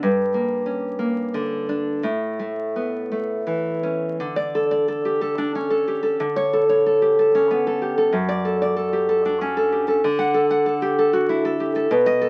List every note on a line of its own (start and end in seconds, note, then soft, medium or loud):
0.03 2.00 G2 medium
0.34 0.98 A#3 soft
0.66 1.69 C#4 soft
0.99 2.04 A#3 soft
1.34 2.04 D3 soft
1.69 2.04 D4 medium
2.03 4.15 A2 medium
2.39 3.10 A3 soft
2.76 3.83 B3 soft
3.12 4.20 A3 soft
3.47 4.19 E3 soft
3.83 4.19 C#4 soft
4.20 6.16 D3 medium
4.36 4.64 D5 medium
4.55 4.87 A4 medium
4.71 5.70 D5 medium
4.88 5.20 A4 soft
5.05 5.87 G4 soft
5.21 5.69 A4 medium
5.38 5.55 D4 medium
5.55 6.20 C#4 soft
5.70 6.02 A4 medium
5.88 6.20 G4 soft
6.03 6.19 A4 soft
6.20 8.09 D3 medium
6.36 6.62 C#5 medium
6.53 6.85 A4 medium
6.69 7.65 C#5 medium
6.86 7.18 A4 soft
7.02 7.81 G4 soft
7.19 7.66 A4 medium
7.35 8.14 C#4 medium
7.51 8.14 B3 soft
7.67 7.96 A4 soft
7.82 8.14 G4 soft
7.98 8.13 A4 soft
8.12 10.00 F#2 medium
8.29 8.55 D5 medium
8.45 8.75 A4 medium
8.62 9.58 D5 medium
8.76 9.08 A4 medium
8.93 9.71 G4 soft
9.09 9.56 A4 medium
9.26 10.04 D4 medium
9.41 10.04 C#4 soft
9.57 9.87 A4 medium
9.72 10.04 G4 soft
9.88 10.04 A4 medium
10.04 11.87 D3 medium
10.19 10.44 F#5 medium
10.34 10.65 A4 medium
10.51 11.29 F#5 medium
10.66 10.97 A4 medium
10.82 11.13 G4 medium
10.99 11.44 A4 medium
11.13 11.60 F#4 medium
11.29 11.91 E4 medium
11.45 11.74 A4 medium
11.60 11.91 G4 soft
11.76 11.91 A4 medium
11.91 12.29 B2 medium
12.06 12.29 D#5 medium
12.22 12.29 A4 medium